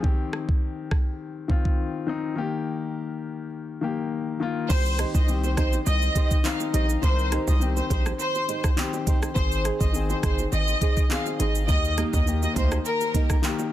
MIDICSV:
0, 0, Header, 1, 7, 480
1, 0, Start_track
1, 0, Key_signature, -3, "minor"
1, 0, Tempo, 582524
1, 33, Time_signature, 4, 2, 24, 8
1, 11310, End_track
2, 0, Start_track
2, 0, Title_t, "Violin section"
2, 0, Program_c, 0, 48
2, 3871, Note_on_c, 0, 72, 116
2, 4063, Note_off_c, 0, 72, 0
2, 4240, Note_on_c, 0, 75, 74
2, 4330, Note_off_c, 0, 75, 0
2, 4481, Note_on_c, 0, 72, 78
2, 4570, Note_off_c, 0, 72, 0
2, 4591, Note_on_c, 0, 72, 94
2, 4693, Note_off_c, 0, 72, 0
2, 4832, Note_on_c, 0, 75, 104
2, 5178, Note_off_c, 0, 75, 0
2, 5311, Note_on_c, 0, 77, 81
2, 5413, Note_off_c, 0, 77, 0
2, 5553, Note_on_c, 0, 75, 77
2, 5654, Note_off_c, 0, 75, 0
2, 5793, Note_on_c, 0, 72, 106
2, 5984, Note_off_c, 0, 72, 0
2, 6160, Note_on_c, 0, 75, 75
2, 6250, Note_off_c, 0, 75, 0
2, 6400, Note_on_c, 0, 72, 83
2, 6490, Note_off_c, 0, 72, 0
2, 6514, Note_on_c, 0, 72, 88
2, 6614, Note_off_c, 0, 72, 0
2, 6754, Note_on_c, 0, 72, 113
2, 7099, Note_off_c, 0, 72, 0
2, 7710, Note_on_c, 0, 72, 114
2, 7902, Note_off_c, 0, 72, 0
2, 8077, Note_on_c, 0, 75, 73
2, 8168, Note_off_c, 0, 75, 0
2, 8319, Note_on_c, 0, 72, 78
2, 8409, Note_off_c, 0, 72, 0
2, 8432, Note_on_c, 0, 72, 92
2, 8534, Note_off_c, 0, 72, 0
2, 8672, Note_on_c, 0, 75, 108
2, 9017, Note_off_c, 0, 75, 0
2, 9150, Note_on_c, 0, 77, 81
2, 9252, Note_off_c, 0, 77, 0
2, 9392, Note_on_c, 0, 75, 77
2, 9494, Note_off_c, 0, 75, 0
2, 9629, Note_on_c, 0, 75, 107
2, 9822, Note_off_c, 0, 75, 0
2, 9997, Note_on_c, 0, 75, 70
2, 10088, Note_off_c, 0, 75, 0
2, 10238, Note_on_c, 0, 75, 85
2, 10329, Note_off_c, 0, 75, 0
2, 10351, Note_on_c, 0, 72, 88
2, 10453, Note_off_c, 0, 72, 0
2, 10590, Note_on_c, 0, 70, 113
2, 10936, Note_off_c, 0, 70, 0
2, 11310, End_track
3, 0, Start_track
3, 0, Title_t, "Nylon-string guitar"
3, 0, Program_c, 1, 24
3, 4110, Note_on_c, 1, 63, 86
3, 4118, Note_on_c, 1, 67, 88
3, 4124, Note_on_c, 1, 72, 94
3, 4289, Note_off_c, 1, 63, 0
3, 4292, Note_off_c, 1, 67, 0
3, 4295, Note_off_c, 1, 72, 0
3, 4591, Note_on_c, 1, 63, 81
3, 4598, Note_on_c, 1, 67, 91
3, 4604, Note_on_c, 1, 72, 107
3, 4769, Note_off_c, 1, 63, 0
3, 4772, Note_off_c, 1, 67, 0
3, 4775, Note_off_c, 1, 72, 0
3, 5069, Note_on_c, 1, 63, 81
3, 5077, Note_on_c, 1, 67, 89
3, 5083, Note_on_c, 1, 72, 98
3, 5248, Note_off_c, 1, 63, 0
3, 5252, Note_off_c, 1, 67, 0
3, 5255, Note_off_c, 1, 72, 0
3, 5550, Note_on_c, 1, 63, 83
3, 5558, Note_on_c, 1, 67, 88
3, 5564, Note_on_c, 1, 72, 88
3, 5669, Note_off_c, 1, 72, 0
3, 5679, Note_off_c, 1, 67, 0
3, 5728, Note_off_c, 1, 63, 0
3, 6031, Note_on_c, 1, 63, 84
3, 6038, Note_on_c, 1, 67, 83
3, 6045, Note_on_c, 1, 72, 93
3, 6209, Note_off_c, 1, 63, 0
3, 6212, Note_off_c, 1, 67, 0
3, 6216, Note_off_c, 1, 72, 0
3, 6510, Note_on_c, 1, 63, 87
3, 6518, Note_on_c, 1, 67, 90
3, 6524, Note_on_c, 1, 72, 100
3, 6688, Note_off_c, 1, 63, 0
3, 6692, Note_off_c, 1, 67, 0
3, 6695, Note_off_c, 1, 72, 0
3, 6989, Note_on_c, 1, 63, 81
3, 6997, Note_on_c, 1, 67, 85
3, 7004, Note_on_c, 1, 72, 101
3, 7168, Note_off_c, 1, 63, 0
3, 7172, Note_off_c, 1, 67, 0
3, 7175, Note_off_c, 1, 72, 0
3, 7470, Note_on_c, 1, 63, 88
3, 7478, Note_on_c, 1, 67, 96
3, 7484, Note_on_c, 1, 72, 87
3, 7588, Note_off_c, 1, 72, 0
3, 7597, Note_off_c, 1, 67, 0
3, 7648, Note_off_c, 1, 63, 0
3, 7949, Note_on_c, 1, 63, 84
3, 7957, Note_on_c, 1, 68, 93
3, 7963, Note_on_c, 1, 72, 88
3, 8128, Note_off_c, 1, 63, 0
3, 8132, Note_off_c, 1, 68, 0
3, 8135, Note_off_c, 1, 72, 0
3, 8429, Note_on_c, 1, 63, 88
3, 8437, Note_on_c, 1, 68, 89
3, 8443, Note_on_c, 1, 72, 85
3, 8608, Note_off_c, 1, 63, 0
3, 8612, Note_off_c, 1, 68, 0
3, 8615, Note_off_c, 1, 72, 0
3, 8908, Note_on_c, 1, 63, 93
3, 8915, Note_on_c, 1, 68, 92
3, 8922, Note_on_c, 1, 72, 99
3, 9087, Note_off_c, 1, 63, 0
3, 9091, Note_off_c, 1, 68, 0
3, 9094, Note_off_c, 1, 72, 0
3, 9388, Note_on_c, 1, 63, 85
3, 9396, Note_on_c, 1, 68, 94
3, 9402, Note_on_c, 1, 72, 90
3, 9508, Note_off_c, 1, 72, 0
3, 9517, Note_off_c, 1, 68, 0
3, 9567, Note_off_c, 1, 63, 0
3, 9869, Note_on_c, 1, 58, 89
3, 9876, Note_on_c, 1, 63, 81
3, 9882, Note_on_c, 1, 67, 94
3, 10048, Note_off_c, 1, 58, 0
3, 10051, Note_off_c, 1, 63, 0
3, 10054, Note_off_c, 1, 67, 0
3, 10347, Note_on_c, 1, 58, 77
3, 10355, Note_on_c, 1, 63, 83
3, 10361, Note_on_c, 1, 67, 90
3, 10527, Note_off_c, 1, 58, 0
3, 10531, Note_off_c, 1, 63, 0
3, 10534, Note_off_c, 1, 67, 0
3, 10829, Note_on_c, 1, 58, 95
3, 10836, Note_on_c, 1, 63, 105
3, 10843, Note_on_c, 1, 67, 100
3, 11008, Note_off_c, 1, 58, 0
3, 11011, Note_off_c, 1, 63, 0
3, 11015, Note_off_c, 1, 67, 0
3, 11310, End_track
4, 0, Start_track
4, 0, Title_t, "Grand piano"
4, 0, Program_c, 2, 0
4, 0, Control_c, 2, 64, 127
4, 20, Note_on_c, 2, 51, 88
4, 31, Note_on_c, 2, 60, 78
4, 42, Note_on_c, 2, 67, 93
4, 44, Control_c, 2, 64, 0
4, 195, Control_c, 2, 64, 127
4, 920, Note_off_c, 2, 51, 0
4, 926, Note_off_c, 2, 60, 0
4, 931, Note_off_c, 2, 67, 0
4, 1220, Note_on_c, 2, 51, 80
4, 1231, Note_on_c, 2, 60, 74
4, 1243, Note_on_c, 2, 65, 90
4, 1673, Note_off_c, 2, 51, 0
4, 1679, Note_off_c, 2, 60, 0
4, 1685, Note_off_c, 2, 65, 0
4, 1702, Note_on_c, 2, 51, 85
4, 1713, Note_on_c, 2, 60, 77
4, 1724, Note_on_c, 2, 63, 93
4, 1928, Note_off_c, 2, 51, 0
4, 1936, Note_off_c, 2, 60, 0
4, 1941, Note_on_c, 2, 51, 88
4, 1942, Note_off_c, 2, 63, 0
4, 1952, Note_on_c, 2, 58, 74
4, 1962, Control_c, 2, 64, 0
4, 1963, Note_on_c, 2, 67, 94
4, 2116, Control_c, 2, 64, 127
4, 2841, Note_off_c, 2, 51, 0
4, 2846, Note_off_c, 2, 58, 0
4, 2852, Note_off_c, 2, 67, 0
4, 3141, Note_on_c, 2, 51, 78
4, 3153, Note_on_c, 2, 58, 74
4, 3164, Note_on_c, 2, 67, 88
4, 3594, Note_off_c, 2, 51, 0
4, 3600, Note_off_c, 2, 58, 0
4, 3605, Note_off_c, 2, 67, 0
4, 3624, Note_on_c, 2, 51, 89
4, 3635, Note_on_c, 2, 58, 77
4, 3647, Note_on_c, 2, 65, 96
4, 3851, Note_off_c, 2, 51, 0
4, 3857, Note_off_c, 2, 58, 0
4, 3863, Note_off_c, 2, 65, 0
4, 3863, Note_on_c, 2, 51, 71
4, 3875, Note_on_c, 2, 60, 67
4, 3885, Control_c, 2, 64, 0
4, 4034, Control_c, 2, 64, 127
4, 4315, Note_off_c, 2, 51, 0
4, 4321, Note_off_c, 2, 60, 0
4, 4343, Note_on_c, 2, 51, 79
4, 4354, Note_on_c, 2, 60, 72
4, 4365, Note_on_c, 2, 67, 84
4, 5242, Note_off_c, 2, 51, 0
4, 5247, Note_off_c, 2, 60, 0
4, 5253, Note_off_c, 2, 67, 0
4, 5302, Note_on_c, 2, 51, 74
4, 5313, Note_on_c, 2, 60, 66
4, 5324, Note_on_c, 2, 63, 78
4, 5754, Note_off_c, 2, 51, 0
4, 5760, Note_off_c, 2, 60, 0
4, 5766, Note_off_c, 2, 63, 0
4, 5780, Note_on_c, 2, 51, 73
4, 5793, Note_on_c, 2, 60, 72
4, 5803, Note_on_c, 2, 70, 82
4, 6234, Note_off_c, 2, 51, 0
4, 6240, Note_off_c, 2, 60, 0
4, 6245, Note_off_c, 2, 70, 0
4, 6261, Note_on_c, 2, 51, 78
4, 6272, Note_on_c, 2, 60, 74
4, 6283, Note_on_c, 2, 67, 86
4, 7161, Note_off_c, 2, 51, 0
4, 7166, Note_off_c, 2, 60, 0
4, 7172, Note_off_c, 2, 67, 0
4, 7221, Note_on_c, 2, 51, 84
4, 7232, Note_on_c, 2, 60, 79
4, 7243, Note_on_c, 2, 67, 95
4, 7674, Note_off_c, 2, 51, 0
4, 7680, Note_off_c, 2, 60, 0
4, 7685, Note_off_c, 2, 67, 0
4, 7702, Note_on_c, 2, 51, 71
4, 7714, Note_on_c, 2, 60, 68
4, 7725, Control_c, 2, 64, 0
4, 7725, Note_on_c, 2, 68, 85
4, 7893, Control_c, 2, 64, 127
4, 8155, Note_off_c, 2, 51, 0
4, 8160, Note_off_c, 2, 60, 0
4, 8166, Note_off_c, 2, 68, 0
4, 8181, Note_on_c, 2, 51, 78
4, 8192, Note_on_c, 2, 60, 73
4, 8203, Note_on_c, 2, 68, 87
4, 9081, Note_off_c, 2, 51, 0
4, 9086, Note_off_c, 2, 60, 0
4, 9092, Note_off_c, 2, 68, 0
4, 9140, Note_on_c, 2, 51, 71
4, 9152, Note_on_c, 2, 60, 66
4, 9162, Note_on_c, 2, 68, 79
4, 9593, Note_off_c, 2, 51, 0
4, 9599, Note_off_c, 2, 60, 0
4, 9604, Note_off_c, 2, 68, 0
4, 9619, Note_on_c, 2, 51, 78
4, 9631, Note_on_c, 2, 58, 69
4, 9642, Note_on_c, 2, 67, 80
4, 9643, Control_c, 2, 64, 0
4, 9791, Control_c, 2, 64, 127
4, 10073, Note_off_c, 2, 51, 0
4, 10079, Note_off_c, 2, 58, 0
4, 10084, Note_off_c, 2, 67, 0
4, 10100, Note_on_c, 2, 51, 74
4, 10111, Note_on_c, 2, 58, 70
4, 10122, Note_on_c, 2, 67, 84
4, 11000, Note_off_c, 2, 51, 0
4, 11006, Note_off_c, 2, 58, 0
4, 11011, Note_off_c, 2, 67, 0
4, 11059, Note_on_c, 2, 51, 82
4, 11071, Note_on_c, 2, 58, 77
4, 11082, Note_on_c, 2, 67, 93
4, 11310, Note_off_c, 2, 51, 0
4, 11310, Note_off_c, 2, 58, 0
4, 11310, Note_off_c, 2, 67, 0
4, 11310, End_track
5, 0, Start_track
5, 0, Title_t, "808-style bass"
5, 0, Program_c, 3, 38
5, 3873, Note_on_c, 3, 36, 109
5, 4160, Note_off_c, 3, 36, 0
5, 4241, Note_on_c, 3, 36, 109
5, 4593, Note_on_c, 3, 34, 92
5, 4605, Note_off_c, 3, 36, 0
5, 4780, Note_off_c, 3, 34, 0
5, 4834, Note_on_c, 3, 36, 109
5, 5021, Note_off_c, 3, 36, 0
5, 5552, Note_on_c, 3, 34, 93
5, 5740, Note_off_c, 3, 34, 0
5, 5793, Note_on_c, 3, 36, 105
5, 6080, Note_off_c, 3, 36, 0
5, 6160, Note_on_c, 3, 36, 109
5, 6436, Note_off_c, 3, 36, 0
5, 6512, Note_on_c, 3, 34, 90
5, 6700, Note_off_c, 3, 34, 0
5, 7713, Note_on_c, 3, 32, 114
5, 8000, Note_off_c, 3, 32, 0
5, 8080, Note_on_c, 3, 32, 101
5, 8356, Note_off_c, 3, 32, 0
5, 8432, Note_on_c, 3, 31, 94
5, 8620, Note_off_c, 3, 31, 0
5, 8672, Note_on_c, 3, 32, 107
5, 8860, Note_off_c, 3, 32, 0
5, 9392, Note_on_c, 3, 32, 92
5, 9631, Note_on_c, 3, 39, 102
5, 9644, Note_off_c, 3, 32, 0
5, 9919, Note_off_c, 3, 39, 0
5, 10000, Note_on_c, 3, 39, 99
5, 10276, Note_off_c, 3, 39, 0
5, 10351, Note_on_c, 3, 38, 97
5, 10540, Note_off_c, 3, 38, 0
5, 11310, End_track
6, 0, Start_track
6, 0, Title_t, "Muted nylon-string guitar strokes"
6, 5679, Note_on_c, 9, 29, 49
6, 5761, Note_off_c, 9, 29, 0
6, 7598, Note_on_c, 9, 29, 52
6, 7680, Note_off_c, 9, 29, 0
6, 9517, Note_on_c, 9, 29, 45
6, 9600, Note_off_c, 9, 29, 0
6, 11310, End_track
7, 0, Start_track
7, 0, Title_t, "Drums"
7, 33, Note_on_c, 9, 36, 115
7, 115, Note_off_c, 9, 36, 0
7, 273, Note_on_c, 9, 37, 85
7, 355, Note_off_c, 9, 37, 0
7, 401, Note_on_c, 9, 36, 86
7, 484, Note_off_c, 9, 36, 0
7, 753, Note_on_c, 9, 36, 88
7, 753, Note_on_c, 9, 37, 85
7, 835, Note_off_c, 9, 36, 0
7, 835, Note_off_c, 9, 37, 0
7, 1233, Note_on_c, 9, 36, 89
7, 1315, Note_off_c, 9, 36, 0
7, 1362, Note_on_c, 9, 36, 97
7, 1444, Note_off_c, 9, 36, 0
7, 3873, Note_on_c, 9, 36, 122
7, 3874, Note_on_c, 9, 49, 96
7, 3874, Note_on_c, 9, 82, 77
7, 3956, Note_off_c, 9, 36, 0
7, 3956, Note_off_c, 9, 49, 0
7, 3956, Note_off_c, 9, 82, 0
7, 4002, Note_on_c, 9, 82, 56
7, 4085, Note_off_c, 9, 82, 0
7, 4111, Note_on_c, 9, 42, 78
7, 4111, Note_on_c, 9, 82, 53
7, 4112, Note_on_c, 9, 37, 93
7, 4193, Note_off_c, 9, 42, 0
7, 4193, Note_off_c, 9, 82, 0
7, 4194, Note_off_c, 9, 37, 0
7, 4241, Note_on_c, 9, 36, 92
7, 4242, Note_on_c, 9, 82, 83
7, 4323, Note_off_c, 9, 36, 0
7, 4324, Note_off_c, 9, 82, 0
7, 4354, Note_on_c, 9, 82, 79
7, 4436, Note_off_c, 9, 82, 0
7, 4481, Note_on_c, 9, 82, 53
7, 4482, Note_on_c, 9, 60, 78
7, 4563, Note_off_c, 9, 82, 0
7, 4564, Note_off_c, 9, 60, 0
7, 4592, Note_on_c, 9, 36, 95
7, 4592, Note_on_c, 9, 37, 91
7, 4592, Note_on_c, 9, 61, 69
7, 4595, Note_on_c, 9, 42, 72
7, 4595, Note_on_c, 9, 82, 53
7, 4675, Note_off_c, 9, 36, 0
7, 4675, Note_off_c, 9, 37, 0
7, 4675, Note_off_c, 9, 61, 0
7, 4677, Note_off_c, 9, 42, 0
7, 4677, Note_off_c, 9, 82, 0
7, 4721, Note_on_c, 9, 82, 69
7, 4723, Note_on_c, 9, 60, 77
7, 4803, Note_off_c, 9, 82, 0
7, 4805, Note_off_c, 9, 60, 0
7, 4833, Note_on_c, 9, 82, 82
7, 4916, Note_off_c, 9, 82, 0
7, 4960, Note_on_c, 9, 82, 51
7, 4964, Note_on_c, 9, 60, 50
7, 5043, Note_off_c, 9, 82, 0
7, 5046, Note_off_c, 9, 60, 0
7, 5072, Note_on_c, 9, 36, 92
7, 5074, Note_on_c, 9, 42, 80
7, 5074, Note_on_c, 9, 82, 58
7, 5154, Note_off_c, 9, 36, 0
7, 5156, Note_off_c, 9, 42, 0
7, 5156, Note_off_c, 9, 82, 0
7, 5199, Note_on_c, 9, 82, 73
7, 5201, Note_on_c, 9, 36, 103
7, 5281, Note_off_c, 9, 82, 0
7, 5283, Note_off_c, 9, 36, 0
7, 5312, Note_on_c, 9, 82, 64
7, 5314, Note_on_c, 9, 39, 93
7, 5315, Note_on_c, 9, 60, 72
7, 5394, Note_off_c, 9, 82, 0
7, 5396, Note_off_c, 9, 39, 0
7, 5397, Note_off_c, 9, 60, 0
7, 5440, Note_on_c, 9, 82, 53
7, 5441, Note_on_c, 9, 60, 84
7, 5522, Note_off_c, 9, 82, 0
7, 5523, Note_off_c, 9, 60, 0
7, 5552, Note_on_c, 9, 61, 72
7, 5554, Note_on_c, 9, 42, 86
7, 5554, Note_on_c, 9, 82, 61
7, 5634, Note_off_c, 9, 61, 0
7, 5637, Note_off_c, 9, 42, 0
7, 5637, Note_off_c, 9, 82, 0
7, 5682, Note_on_c, 9, 82, 72
7, 5764, Note_off_c, 9, 82, 0
7, 5793, Note_on_c, 9, 36, 118
7, 5794, Note_on_c, 9, 82, 74
7, 5876, Note_off_c, 9, 36, 0
7, 5876, Note_off_c, 9, 82, 0
7, 5924, Note_on_c, 9, 82, 54
7, 6006, Note_off_c, 9, 82, 0
7, 6032, Note_on_c, 9, 42, 79
7, 6032, Note_on_c, 9, 82, 57
7, 6033, Note_on_c, 9, 37, 93
7, 6114, Note_off_c, 9, 42, 0
7, 6114, Note_off_c, 9, 82, 0
7, 6115, Note_off_c, 9, 37, 0
7, 6161, Note_on_c, 9, 36, 88
7, 6161, Note_on_c, 9, 82, 82
7, 6243, Note_off_c, 9, 36, 0
7, 6244, Note_off_c, 9, 82, 0
7, 6274, Note_on_c, 9, 82, 75
7, 6356, Note_off_c, 9, 82, 0
7, 6401, Note_on_c, 9, 60, 77
7, 6401, Note_on_c, 9, 82, 51
7, 6483, Note_off_c, 9, 60, 0
7, 6483, Note_off_c, 9, 82, 0
7, 6512, Note_on_c, 9, 61, 72
7, 6513, Note_on_c, 9, 36, 97
7, 6516, Note_on_c, 9, 42, 76
7, 6516, Note_on_c, 9, 82, 51
7, 6595, Note_off_c, 9, 36, 0
7, 6595, Note_off_c, 9, 61, 0
7, 6598, Note_off_c, 9, 42, 0
7, 6598, Note_off_c, 9, 82, 0
7, 6641, Note_on_c, 9, 82, 66
7, 6642, Note_on_c, 9, 37, 95
7, 6642, Note_on_c, 9, 60, 79
7, 6723, Note_off_c, 9, 82, 0
7, 6724, Note_off_c, 9, 60, 0
7, 6725, Note_off_c, 9, 37, 0
7, 6753, Note_on_c, 9, 82, 79
7, 6836, Note_off_c, 9, 82, 0
7, 6880, Note_on_c, 9, 82, 49
7, 6884, Note_on_c, 9, 60, 50
7, 6963, Note_off_c, 9, 82, 0
7, 6966, Note_off_c, 9, 60, 0
7, 6995, Note_on_c, 9, 42, 82
7, 6995, Note_on_c, 9, 82, 59
7, 7078, Note_off_c, 9, 42, 0
7, 7078, Note_off_c, 9, 82, 0
7, 7119, Note_on_c, 9, 37, 103
7, 7120, Note_on_c, 9, 82, 72
7, 7121, Note_on_c, 9, 36, 97
7, 7201, Note_off_c, 9, 37, 0
7, 7203, Note_off_c, 9, 36, 0
7, 7203, Note_off_c, 9, 82, 0
7, 7233, Note_on_c, 9, 82, 66
7, 7234, Note_on_c, 9, 60, 77
7, 7235, Note_on_c, 9, 39, 92
7, 7315, Note_off_c, 9, 82, 0
7, 7317, Note_off_c, 9, 39, 0
7, 7317, Note_off_c, 9, 60, 0
7, 7361, Note_on_c, 9, 60, 82
7, 7361, Note_on_c, 9, 82, 51
7, 7443, Note_off_c, 9, 60, 0
7, 7443, Note_off_c, 9, 82, 0
7, 7472, Note_on_c, 9, 61, 74
7, 7473, Note_on_c, 9, 36, 98
7, 7475, Note_on_c, 9, 42, 87
7, 7475, Note_on_c, 9, 82, 64
7, 7555, Note_off_c, 9, 61, 0
7, 7556, Note_off_c, 9, 36, 0
7, 7557, Note_off_c, 9, 42, 0
7, 7557, Note_off_c, 9, 82, 0
7, 7602, Note_on_c, 9, 37, 89
7, 7602, Note_on_c, 9, 82, 68
7, 7685, Note_off_c, 9, 37, 0
7, 7685, Note_off_c, 9, 82, 0
7, 7713, Note_on_c, 9, 36, 118
7, 7714, Note_on_c, 9, 82, 76
7, 7796, Note_off_c, 9, 36, 0
7, 7797, Note_off_c, 9, 82, 0
7, 7844, Note_on_c, 9, 82, 57
7, 7926, Note_off_c, 9, 82, 0
7, 7952, Note_on_c, 9, 42, 76
7, 7952, Note_on_c, 9, 82, 57
7, 7953, Note_on_c, 9, 37, 90
7, 8035, Note_off_c, 9, 37, 0
7, 8035, Note_off_c, 9, 42, 0
7, 8035, Note_off_c, 9, 82, 0
7, 8081, Note_on_c, 9, 36, 93
7, 8082, Note_on_c, 9, 82, 78
7, 8163, Note_off_c, 9, 36, 0
7, 8165, Note_off_c, 9, 82, 0
7, 8194, Note_on_c, 9, 82, 82
7, 8277, Note_off_c, 9, 82, 0
7, 8320, Note_on_c, 9, 82, 53
7, 8322, Note_on_c, 9, 60, 78
7, 8402, Note_off_c, 9, 82, 0
7, 8404, Note_off_c, 9, 60, 0
7, 8431, Note_on_c, 9, 37, 89
7, 8432, Note_on_c, 9, 36, 101
7, 8433, Note_on_c, 9, 42, 72
7, 8433, Note_on_c, 9, 82, 54
7, 8434, Note_on_c, 9, 61, 74
7, 8513, Note_off_c, 9, 37, 0
7, 8514, Note_off_c, 9, 36, 0
7, 8516, Note_off_c, 9, 42, 0
7, 8516, Note_off_c, 9, 61, 0
7, 8516, Note_off_c, 9, 82, 0
7, 8558, Note_on_c, 9, 82, 66
7, 8563, Note_on_c, 9, 60, 76
7, 8640, Note_off_c, 9, 82, 0
7, 8645, Note_off_c, 9, 60, 0
7, 8671, Note_on_c, 9, 82, 80
7, 8754, Note_off_c, 9, 82, 0
7, 8799, Note_on_c, 9, 82, 49
7, 8804, Note_on_c, 9, 60, 46
7, 8881, Note_off_c, 9, 82, 0
7, 8887, Note_off_c, 9, 60, 0
7, 8911, Note_on_c, 9, 36, 97
7, 8913, Note_on_c, 9, 42, 82
7, 8913, Note_on_c, 9, 82, 58
7, 8993, Note_off_c, 9, 36, 0
7, 8995, Note_off_c, 9, 42, 0
7, 8995, Note_off_c, 9, 82, 0
7, 9038, Note_on_c, 9, 82, 75
7, 9040, Note_on_c, 9, 36, 101
7, 9120, Note_off_c, 9, 82, 0
7, 9122, Note_off_c, 9, 36, 0
7, 9150, Note_on_c, 9, 82, 62
7, 9152, Note_on_c, 9, 39, 88
7, 9154, Note_on_c, 9, 60, 75
7, 9232, Note_off_c, 9, 82, 0
7, 9234, Note_off_c, 9, 39, 0
7, 9236, Note_off_c, 9, 60, 0
7, 9278, Note_on_c, 9, 82, 53
7, 9280, Note_on_c, 9, 60, 82
7, 9361, Note_off_c, 9, 82, 0
7, 9362, Note_off_c, 9, 60, 0
7, 9391, Note_on_c, 9, 61, 75
7, 9392, Note_on_c, 9, 42, 85
7, 9392, Note_on_c, 9, 82, 60
7, 9473, Note_off_c, 9, 61, 0
7, 9475, Note_off_c, 9, 42, 0
7, 9475, Note_off_c, 9, 82, 0
7, 9520, Note_on_c, 9, 82, 73
7, 9602, Note_off_c, 9, 82, 0
7, 9631, Note_on_c, 9, 36, 123
7, 9631, Note_on_c, 9, 82, 76
7, 9713, Note_off_c, 9, 82, 0
7, 9714, Note_off_c, 9, 36, 0
7, 9762, Note_on_c, 9, 82, 56
7, 9844, Note_off_c, 9, 82, 0
7, 9870, Note_on_c, 9, 37, 87
7, 9870, Note_on_c, 9, 42, 77
7, 9870, Note_on_c, 9, 82, 55
7, 9872, Note_on_c, 9, 60, 57
7, 9952, Note_off_c, 9, 42, 0
7, 9952, Note_off_c, 9, 82, 0
7, 9953, Note_off_c, 9, 37, 0
7, 9954, Note_off_c, 9, 60, 0
7, 10000, Note_on_c, 9, 36, 94
7, 10000, Note_on_c, 9, 82, 78
7, 10082, Note_off_c, 9, 36, 0
7, 10083, Note_off_c, 9, 82, 0
7, 10113, Note_on_c, 9, 82, 82
7, 10195, Note_off_c, 9, 82, 0
7, 10239, Note_on_c, 9, 82, 53
7, 10241, Note_on_c, 9, 60, 76
7, 10322, Note_off_c, 9, 82, 0
7, 10323, Note_off_c, 9, 60, 0
7, 10351, Note_on_c, 9, 36, 102
7, 10352, Note_on_c, 9, 61, 75
7, 10353, Note_on_c, 9, 42, 72
7, 10353, Note_on_c, 9, 82, 53
7, 10434, Note_off_c, 9, 36, 0
7, 10434, Note_off_c, 9, 61, 0
7, 10435, Note_off_c, 9, 42, 0
7, 10435, Note_off_c, 9, 82, 0
7, 10478, Note_on_c, 9, 82, 67
7, 10479, Note_on_c, 9, 37, 99
7, 10481, Note_on_c, 9, 60, 76
7, 10560, Note_off_c, 9, 82, 0
7, 10561, Note_off_c, 9, 37, 0
7, 10563, Note_off_c, 9, 60, 0
7, 10592, Note_on_c, 9, 82, 79
7, 10674, Note_off_c, 9, 82, 0
7, 10719, Note_on_c, 9, 82, 50
7, 10723, Note_on_c, 9, 60, 50
7, 10801, Note_off_c, 9, 82, 0
7, 10806, Note_off_c, 9, 60, 0
7, 10831, Note_on_c, 9, 36, 95
7, 10832, Note_on_c, 9, 42, 81
7, 10832, Note_on_c, 9, 82, 57
7, 10913, Note_off_c, 9, 36, 0
7, 10915, Note_off_c, 9, 42, 0
7, 10915, Note_off_c, 9, 82, 0
7, 10957, Note_on_c, 9, 37, 100
7, 10958, Note_on_c, 9, 82, 74
7, 10960, Note_on_c, 9, 36, 102
7, 11039, Note_off_c, 9, 37, 0
7, 11041, Note_off_c, 9, 82, 0
7, 11042, Note_off_c, 9, 36, 0
7, 11071, Note_on_c, 9, 82, 66
7, 11073, Note_on_c, 9, 39, 91
7, 11073, Note_on_c, 9, 60, 79
7, 11153, Note_off_c, 9, 82, 0
7, 11155, Note_off_c, 9, 39, 0
7, 11156, Note_off_c, 9, 60, 0
7, 11198, Note_on_c, 9, 82, 50
7, 11200, Note_on_c, 9, 60, 84
7, 11280, Note_off_c, 9, 82, 0
7, 11282, Note_off_c, 9, 60, 0
7, 11310, End_track
0, 0, End_of_file